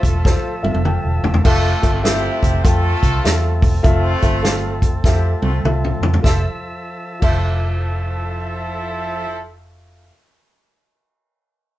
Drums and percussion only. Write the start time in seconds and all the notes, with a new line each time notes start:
0.03 kick, closed hi-hat
0.25 kick, snare
0.64 high tom
0.74 high tom
0.85 mid tom
1.24 floor tom
1.34 floor tom
1.45 kick, crash
1.83 kick, closed hi-hat
2.05 snare, closed hi-hat
2.43 kick, closed hi-hat
2.65 kick, closed hi-hat
3.03 kick, closed hi-hat
3.25 snare, closed hi-hat
3.62 kick, open hi-hat
3.84 kick, closed hi-hat
4.22 kick, closed hi-hat
4.45 snare, closed hi-hat
4.82 kick, closed hi-hat
5.04 kick, snare
5.42 high tom
5.65 mid tom
5.84 mid tom
6.03 floor tom
6.14 floor tom
6.24 kick, snare
7.22 kick, crash